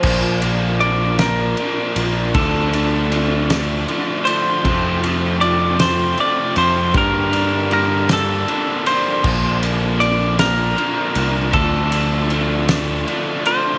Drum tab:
CC |x-----|------|------|------|
RD |-xxxxx|xxxxxx|xxxxxx|xxxxxx|
SD |---o--|---o--|---o--|---o--|
BD |o-----|o-----|o-----|o-----|

CC |x-----|------|
RD |-xxxxx|xxxxxx|
SD |---o--|---o--|
BD |o-----|o-----|